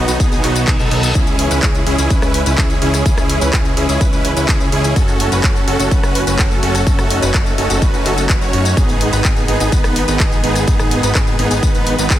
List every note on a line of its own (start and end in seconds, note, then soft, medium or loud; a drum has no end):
0.00 1.11 D#3 medium
0.00 1.11 F#3 medium
0.00 1.11 B3 medium
0.08 0.18 B1 loud
0.08 0.18 B3 medium
0.08 0.18 D#4 medium
0.08 0.18 F#4 loud
0.08 closed hi-hat medium
0.08 tambourine medium
0.20 0.30 B1 loud
0.20 0.29 B3 medium
0.20 0.29 D#4 medium
0.20 0.29 G#4 medium
0.20 kick loud
0.20 closed hi-hat medium
0.20 tambourine medium
0.20 reverse cymbal medium
0.32 0.41 B1 loud
0.32 0.41 B3 medium
0.32 0.41 D#4 medium
0.32 0.41 G#4 medium
0.32 closed hi-hat soft
0.32 tambourine soft
0.44 0.65 B1 medium
0.44 0.62 B3 medium
0.44 0.62 D#4 medium
0.44 0.62 F#4 loud
0.44 clap soft
0.44 open hi-hat loud
0.56 closed hi-hat medium
0.56 tambourine medium
0.67 0.77 B1 loud
0.67 0.77 B3 medium
0.67 0.77 D#4 medium
0.67 0.77 G#4 medium
0.67 kick loud
0.67 clap loud
0.67 closed hi-hat medium
0.67 tambourine medium
0.79 0.89 B1 loud
0.79 0.90 B3 medium
0.79 0.90 D#4 medium
0.79 0.90 A4 loud
0.79 closed hi-hat soft
0.79 tambourine soft
0.91 1.13 B1 medium
0.91 1.12 B3 medium
0.91 1.12 D#4 medium
0.91 1.12 A4 medium
0.91 open hi-hat medium
1.03 closed hi-hat medium
1.03 tambourine medium
1.15 1.49 C#2 loud
1.15 4.92 E3 medium
1.15 4.92 G#3 medium
1.15 1.48 C#4 medium
1.15 4.92 C#4 medium
1.15 1.48 E4 medium
1.15 1.48 G#4 medium
1.15 kick loud
1.15 closed hi-hat medium
1.15 tambourine medium
1.27 closed hi-hat soft
1.27 tambourine soft
1.39 open hi-hat loud
1.51 1.61 C#2 loud
1.51 1.60 C#4 loud
1.51 1.60 E4 medium
1.51 1.60 B4 loud
1.51 closed hi-hat medium
1.51 tambourine medium
1.63 1.84 C#2 loud
1.63 1.81 C#4 medium
1.63 1.81 E4 medium
1.63 1.81 G#4 medium
1.63 kick loud
1.63 clap loud
1.63 closed hi-hat medium
1.63 tambourine medium
1.75 closed hi-hat soft
1.75 tambourine soft
1.87 1.96 C#2 loud
1.87 1.96 C#4 medium
1.87 1.96 E4 medium
1.87 1.96 G#4 loud
1.87 open hi-hat medium
1.98 2.08 C#2 medium
1.98 2.09 C#4 medium
1.98 2.09 E4 medium
1.98 2.09 G#4 loud
1.98 closed hi-hat medium
1.98 tambourine medium
2.10 2.20 C#2 loud
2.10 2.19 C#4 medium
2.10 2.19 E4 medium
2.10 2.19 B4 medium
2.10 kick loud
2.10 closed hi-hat medium
2.10 tambourine medium
2.22 2.44 C#2 loud
2.22 2.40 C#4 medium
2.22 2.40 E4 medium
2.22 2.40 B4 medium
2.22 cross-stick medium
2.22 closed hi-hat soft
2.22 tambourine soft
2.34 open hi-hat loud
2.46 2.56 C#2 loud
2.46 2.56 C#4 medium
2.46 2.56 E4 medium
2.46 2.56 B4 medium
2.46 closed hi-hat medium
2.46 tambourine medium
2.58 2.80 C#2 loud
2.58 2.76 C#4 medium
2.58 2.76 E4 medium
2.58 2.76 G#4 loud
2.58 kick loud
2.58 clap loud
2.58 closed hi-hat medium
2.58 tambourine medium
2.70 closed hi-hat soft
2.70 tambourine soft
2.82 3.03 C#2 medium
2.82 3.02 C#4 loud
2.82 3.02 E4 medium
2.82 3.02 G#4 loud
2.82 open hi-hat medium
2.94 cross-stick medium
2.94 closed hi-hat medium
2.94 tambourine medium
3.06 3.39 C#2 loud
3.06 3.39 C#4 medium
3.06 3.38 E4 medium
3.06 3.39 G#4 medium
3.06 kick loud
3.06 closed hi-hat medium
3.06 tambourine medium
3.18 cross-stick medium
3.18 closed hi-hat soft
3.18 tambourine soft
3.30 open hi-hat loud
3.41 3.51 C#2 loud
3.41 3.50 C#4 loud
3.41 3.50 E4 medium
3.41 3.50 B4 loud
3.41 closed hi-hat medium
3.41 tambourine medium
3.53 3.75 C#2 medium
3.53 3.71 C#4 medium
3.53 3.71 E4 medium
3.53 3.71 G#4 medium
3.53 kick loud
3.53 cross-stick medium
3.53 clap loud
3.53 closed hi-hat medium
3.53 tambourine medium
3.65 closed hi-hat soft
3.65 tambourine soft
3.77 3.87 C#2 loud
3.77 3.86 C#4 medium
3.77 3.86 E4 medium
3.77 3.86 G#4 loud
3.77 open hi-hat medium
3.89 3.99 C#2 medium
3.89 3.99 C#4 medium
3.89 3.99 E4 medium
3.89 3.99 G#4 loud
3.89 closed hi-hat medium
3.89 tambourine medium
4.01 4.10 C#2 loud
4.01 4.10 C#4 medium
4.01 4.10 E4 medium
4.01 4.10 B4 medium
4.01 kick loud
4.01 closed hi-hat medium
4.01 tambourine medium
4.13 4.34 C#2 loud
4.13 4.31 C#4 medium
4.13 4.30 E4 medium
4.13 4.30 B4 medium
4.13 closed hi-hat soft
4.13 tambourine soft
4.25 open hi-hat loud
4.37 4.46 C#2 loud
4.37 4.47 C#4 medium
4.37 4.47 E4 medium
4.37 4.47 B4 medium
4.37 closed hi-hat medium
4.37 tambourine medium
4.49 4.70 C#2 loud
4.49 4.66 C#4 loud
4.49 4.66 E4 medium
4.49 4.66 G#4 loud
4.49 kick loud
4.49 clap loud
4.49 closed hi-hat medium
4.49 tambourine medium
4.61 closed hi-hat soft
4.61 tambourine soft
4.72 4.94 C#2 medium
4.72 4.93 C#4 loud
4.72 4.93 E4 medium
4.72 4.93 G#4 loud
4.72 open hi-hat medium
4.84 closed hi-hat medium
4.84 tambourine medium
4.96 5.29 F#1 medium
4.96 8.73 F#3 medium
4.96 8.73 A3 medium
4.96 5.29 C#4 medium
4.96 6.85 C#4 medium
4.96 5.29 F#4 medium
4.96 5.29 A4 medium
4.96 kick loud
4.96 closed hi-hat medium
4.96 tambourine medium
5.08 closed hi-hat soft
5.08 tambourine soft
5.20 open hi-hat loud
5.32 5.41 F#1 loud
5.32 5.41 C#4 loud
5.32 5.41 F#4 medium
5.32 5.41 B4 loud
5.32 closed hi-hat medium
5.32 tambourine medium
5.44 5.65 F#1 medium
5.44 5.61 C#4 medium
5.44 5.61 F#4 medium
5.44 5.61 A4 medium
5.44 kick loud
5.44 clap loud
5.44 closed hi-hat medium
5.44 tambourine medium
5.56 closed hi-hat soft
5.56 tambourine soft
5.67 5.77 F#1 loud
5.67 5.77 C#4 medium
5.67 5.77 F#4 medium
5.67 5.77 A4 loud
5.67 open hi-hat loud
5.79 5.89 F#1 medium
5.79 5.90 C#4 loud
5.79 5.90 F#4 medium
5.79 5.90 A4 loud
5.79 closed hi-hat soft
5.79 tambourine medium
5.91 6.01 F#1 loud
5.91 6.00 C#4 medium
5.91 6.00 F#4 medium
5.91 6.00 B4 medium
5.91 kick loud
5.91 closed hi-hat medium
5.91 tambourine medium
6.03 6.25 F#1 loud
6.03 6.21 C#4 medium
6.03 6.21 F#4 medium
6.03 6.21 B4 medium
6.03 cross-stick medium
6.03 closed hi-hat soft
6.03 tambourine soft
6.15 open hi-hat loud
6.27 6.37 F#1 loud
6.27 6.37 C#4 medium
6.27 6.37 F#4 medium
6.27 6.37 B4 medium
6.27 closed hi-hat medium
6.27 tambourine medium
6.39 6.60 F#1 loud
6.39 6.57 C#4 loud
6.39 6.57 F#4 medium
6.39 6.57 A4 loud
6.39 kick loud
6.39 clap loud
6.39 closed hi-hat medium
6.39 tambourine medium
6.51 closed hi-hat soft
6.51 tambourine soft
6.63 6.84 F#1 loud
6.63 6.83 C#4 loud
6.63 6.83 F#4 medium
6.63 6.83 A4 loud
6.63 open hi-hat loud
6.75 cross-stick medium
6.75 closed hi-hat medium
6.75 tambourine medium
6.87 7.20 F#1 loud
6.87 7.20 C#4 medium
6.87 8.75 D#4 medium
6.87 7.20 F#4 medium
6.87 7.20 A4 medium
6.87 kick loud
6.87 closed hi-hat medium
6.87 tambourine medium
6.99 cross-stick medium
6.99 closed hi-hat soft
6.99 tambourine soft
7.10 open hi-hat loud
7.22 7.32 F#1 medium
7.22 7.31 C#4 loud
7.22 7.31 F#4 medium
7.22 7.31 B4 loud
7.22 closed hi-hat medium
7.22 tambourine medium
7.34 7.56 F#1 medium
7.34 7.52 C#4 medium
7.34 7.52 F#4 medium
7.34 7.52 A4 medium
7.34 kick loud
7.34 cross-stick medium
7.34 clap loud
7.34 closed hi-hat medium
7.34 tambourine medium
7.46 closed hi-hat soft
7.46 tambourine soft
7.58 7.68 F#1 loud
7.58 7.67 C#4 medium
7.58 7.67 F#4 medium
7.58 7.67 A4 medium
7.58 open hi-hat loud
7.70 7.80 F#1 loud
7.70 7.80 C#4 loud
7.70 7.80 F#4 medium
7.70 7.80 A4 loud
7.70 closed hi-hat medium
7.70 tambourine medium
7.82 7.91 F#1 loud
7.82 7.91 C#4 medium
7.82 7.91 F#4 medium
7.82 7.91 B4 medium
7.82 kick loud
7.82 closed hi-hat medium
7.82 tambourine medium
7.94 8.03 F#1 loud
7.94 8.03 C#4 medium
7.94 8.03 F#4 medium
7.94 8.03 B4 medium
7.94 closed hi-hat soft
7.94 tambourine soft
8.06 8.27 F#1 medium
8.06 8.23 C#4 medium
8.06 8.23 F#4 medium
8.06 8.23 A4 loud
8.06 clap soft
8.06 open hi-hat loud
8.18 closed hi-hat medium
8.18 tambourine medium
8.29 8.39 F#1 loud
8.29 8.39 C#4 medium
8.29 8.39 F#4 medium
8.29 8.39 B4 medium
8.29 kick loud
8.29 clap loud
8.29 closed hi-hat medium
8.29 tambourine medium
8.41 8.51 F#1 loud
8.41 8.51 C#4 medium
8.41 8.51 F#4 medium
8.41 8.51 C#5 medium
8.41 closed hi-hat soft
8.41 tambourine soft
8.53 8.75 F#2 loud
8.53 8.74 C#4 medium
8.53 8.74 F#4 medium
8.53 8.74 C#5 medium
8.53 open hi-hat loud
8.65 closed hi-hat medium
8.65 tambourine medium
8.77 9.10 G#1 loud
8.77 12.19 D#3 medium
8.77 12.19 G#3 medium
8.77 9.10 B3 medium
8.77 12.19 B3 medium
8.77 9.10 D#4 medium
8.77 9.10 G#4 medium
8.77 kick loud
8.77 closed hi-hat medium
8.77 tambourine medium
8.89 closed hi-hat soft
8.89 tambourine soft
9.01 open hi-hat loud
9.13 9.22 G#1 loud
9.13 9.22 B3 loud
9.13 9.22 D#4 medium
9.13 9.22 B4 loud
9.13 closed hi-hat soft
9.13 tambourine medium
9.25 9.46 G#1 medium
9.25 9.42 B3 medium
9.25 9.42 D#4 medium
9.25 9.42 G#4 medium
9.25 kick loud
9.25 clap loud
9.25 closed hi-hat medium
9.25 tambourine medium
9.37 closed hi-hat soft
9.37 tambourine soft
9.48 9.58 G#1 loud
9.48 9.58 B3 medium
9.48 9.58 D#4 medium
9.48 9.58 G#4 loud
9.48 open hi-hat medium
9.60 9.70 G#1 medium
9.60 9.71 B3 loud
9.60 9.71 D#4 medium
9.60 9.71 G#4 loud
9.60 closed hi-hat medium
9.60 tambourine medium
9.72 9.82 G#1 loud
9.72 9.81 B3 medium
9.72 9.81 D#4 medium
9.72 9.81 B4 medium
9.72 kick loud
9.72 closed hi-hat medium
9.72 tambourine medium
9.84 10.06 G#1 medium
9.84 10.02 B3 medium
9.84 10.02 D#4 medium
9.84 10.02 B4 medium
9.84 cross-stick medium
9.84 closed hi-hat soft
9.84 tambourine soft
9.96 open hi-hat loud
10.08 10.18 G#1 loud
10.08 10.18 B3 medium
10.08 10.18 D#4 medium
10.08 10.18 B4 medium
10.08 closed hi-hat medium
10.08 tambourine medium
10.20 10.41 G#1 loud
10.20 10.38 B3 medium
10.20 10.38 D#4 medium
10.20 10.38 G#4 loud
10.20 kick loud
10.20 clap loud
10.20 closed hi-hat medium
10.20 tambourine medium
10.32 closed hi-hat soft
10.32 tambourine soft
10.44 10.65 G#1 medium
10.44 10.64 B3 loud
10.44 10.64 D#4 medium
10.44 10.64 G#4 loud
10.44 open hi-hat medium
10.56 cross-stick medium
10.56 closed hi-hat soft
10.56 tambourine medium
10.68 11.01 G#1 loud
10.68 11.01 B3 medium
10.68 11.01 D#4 medium
10.68 11.01 G#4 medium
10.68 kick loud
10.68 closed hi-hat medium
10.68 tambourine medium
10.79 cross-stick medium
10.79 closed hi-hat soft
10.79 tambourine soft
10.91 open hi-hat loud
11.03 11.13 G#1 loud
11.03 11.12 B3 loud
11.03 11.12 D#4 medium
11.03 11.12 B4 loud
11.03 closed hi-hat medium
11.03 tambourine medium
11.15 11.37 G#1 medium
11.15 11.33 B3 medium
11.15 11.33 D#4 medium
11.15 11.33 G#4 medium
11.15 kick loud
11.15 cross-stick medium
11.15 clap loud
11.15 closed hi-hat medium
11.15 tambourine medium
11.27 closed hi-hat soft
11.27 tambourine soft
11.39 11.49 G#1 loud
11.39 11.48 B3 medium
11.39 11.48 D#4 medium
11.39 11.48 G#4 loud
11.39 open hi-hat medium
11.51 11.60 G#1 medium
11.51 11.61 B3 loud
11.51 11.61 D#4 medium
11.51 11.61 G#4 loud
11.51 closed hi-hat medium
11.51 tambourine medium
11.63 11.72 G#1 loud
11.63 11.72 B3 medium
11.63 11.72 D#4 medium
11.63 11.72 B4 medium
11.63 kick loud
11.63 closed hi-hat medium
11.63 tambourine medium
11.75 11.96 G#1 loud
11.75 11.92 B3 medium
11.75 11.93 D#4 medium
11.75 11.92 B4 medium
11.75 closed hi-hat soft
11.75 tambourine soft
11.87 open hi-hat loud
11.98 12.08 G#1 loud
11.98 12.09 B3 medium
11.98 12.09 D#4 medium
11.98 12.09 B4 medium
11.98 closed hi-hat medium
11.98 tambourine medium
12.10 12.19 G#2 loud
12.10 12.19 B3 loud
12.10 12.19 D#4 medium
12.10 12.19 G#4 loud
12.10 kick loud
12.10 clap loud
12.10 closed hi-hat medium
12.10 tambourine medium